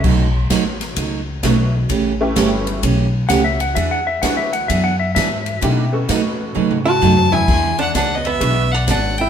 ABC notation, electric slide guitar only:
X:1
M:4/4
L:1/8
Q:"Swing" 1/4=129
K:Emix
V:1 name="Electric slide guitar"
z8 | z6 (3f e f | (3e f e (3f e f (3e f e e2 | z8 |
z8 |]